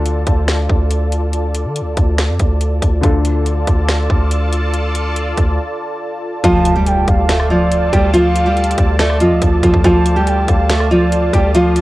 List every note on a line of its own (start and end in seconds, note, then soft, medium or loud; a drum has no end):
0.00 0.24 D2 loud
0.00 2.98 D3 medium
0.00 2.99 D4 medium
0.00 2.99 F4 medium
0.00 3.00 F4 medium
0.00 2.99 A4 medium
0.00 3.00 A4 medium
0.00 2.99 D5 medium
0.00 2.99 A5 medium
0.06 closed hi-hat medium
0.27 0.68 D2 loud
0.27 kick loud
0.27 closed hi-hat medium
0.48 finger snap medium
0.48 snare loud
0.48 closed hi-hat medium
0.69 1.67 D2 loud
0.69 kick medium
0.91 closed hi-hat medium
1.12 closed hi-hat medium
1.33 closed hi-hat medium
1.55 closed hi-hat medium
1.65 1.83 D3 loud
1.76 closed hi-hat medium
1.81 1.96 D2 loud
1.97 2.31 D2 loud
1.97 kick loud
1.97 closed hi-hat medium
2.18 finger snap medium
2.18 snare loud
2.18 closed hi-hat medium
2.29 2.39 F2 loud
2.40 2.81 D2 loud
2.40 kick medium
2.40 closed hi-hat medium
2.61 closed hi-hat medium
2.82 3.03 D2 loud
2.82 kick medium
2.82 closed hi-hat medium
3.01 3.65 D2 loud
3.01 6.39 D3 medium
3.01 6.39 D4 medium
3.01 6.41 F4 medium
3.01 6.40 F4 medium
3.01 6.41 A4 medium
3.01 6.41 D5 medium
3.01 6.41 A5 medium
3.01 kick loud
3.01 closed hi-hat medium
3.05 6.41 A4 medium
3.25 closed hi-hat medium
3.46 closed hi-hat medium
3.67 4.08 D2 loud
3.67 kick loud
3.67 closed hi-hat medium
3.89 finger snap medium
3.89 snare loud
3.89 closed hi-hat medium
4.10 5.34 D2 loud
4.10 kick medium
4.31 closed hi-hat medium
4.53 closed hi-hat medium
4.74 closed hi-hat medium
4.95 closed hi-hat medium
5.16 closed hi-hat medium
5.38 5.58 D2 loud
5.38 kick loud
5.38 closed hi-hat medium
6.44 7.05 D2 loud
6.44 6.74 F3 loud
6.44 6.74 F4 loud
6.44 9.81 F4 medium
6.44 11.81 A4 medium
6.44 11.81 D5 medium
6.44 6.84 A5 loud
6.44 11.81 A5 loud
6.44 kick loud
6.44 closed hi-hat medium
6.44 impact medium
6.65 closed hi-hat medium
6.76 7.26 G3 medium
6.76 7.26 G4 medium
6.86 7.07 G5 loud
6.86 closed hi-hat medium
7.08 7.89 D2 loud
7.08 7.48 F5 loud
7.08 kick loud
7.08 closed hi-hat medium
7.29 7.47 A3 medium
7.29 7.46 A4 medium
7.29 finger snap loud
7.29 snare loud
7.29 closed hi-hat medium
7.40 cross-stick medium
7.50 7.91 F3 medium
7.50 7.90 F4 medium
7.50 8.10 D5 medium
7.72 closed hi-hat medium
7.93 8.75 D2 loud
7.93 8.10 G3 medium
7.93 8.10 G4 medium
7.93 kick loud
7.93 closed hi-hat medium
8.13 8.44 F3 medium
8.13 8.44 F4 loud
8.13 8.95 F5 loud
8.13 closed hi-hat medium
8.36 closed hi-hat medium
8.46 8.96 G3 medium
8.46 8.96 G4 medium
8.57 closed hi-hat soft
8.64 closed hi-hat medium
8.71 closed hi-hat medium
8.78 9.22 D2 loud
8.78 kick loud
8.78 closed hi-hat medium
8.99 9.17 A3 medium
8.99 9.16 A4 loud
8.99 9.20 D5 medium
8.99 finger snap loud
8.99 snare loud
8.99 closed hi-hat medium
9.10 cross-stick medium
9.20 9.33 F2 loud
9.20 9.61 F3 medium
9.20 9.61 F4 medium
9.20 9.41 D#5 loud
9.20 closed hi-hat medium
9.31 9.41 D2 loud
9.42 9.62 D2 loud
9.42 kick medium
9.42 closed hi-hat medium
9.63 9.73 D2 loud
9.63 9.81 F3 medium
9.63 9.80 F4 medium
9.63 kick medium
9.63 closed hi-hat medium
9.74 9.84 D2 loud
9.74 kick medium
9.84 10.46 D2 loud
9.84 10.15 F3 medium
9.84 11.81 F4 medium
9.84 10.14 F4 loud
9.84 10.24 A5 loud
9.84 kick loud
9.84 closed hi-hat medium
10.06 closed hi-hat medium
10.16 10.67 G3 medium
10.16 10.66 G4 medium
10.27 10.47 G5 loud
10.27 closed hi-hat medium
10.48 11.30 D2 loud
10.48 10.88 F5 medium
10.48 kick loud
10.48 closed hi-hat medium
10.69 10.87 A3 medium
10.69 10.87 A4 medium
10.69 finger snap loud
10.69 snare loud
10.69 closed hi-hat medium
10.80 cross-stick medium
10.91 11.31 F3 medium
10.91 11.31 F4 medium
10.91 11.51 D5 medium
11.12 closed hi-hat medium
11.33 11.81 D2 loud
11.33 11.51 G3 medium
11.33 11.51 G4 medium
11.33 kick medium
11.33 closed hi-hat medium
11.54 11.81 F3 medium
11.54 11.81 F4 loud
11.54 11.81 F5 loud
11.54 closed hi-hat medium
11.76 closed hi-hat medium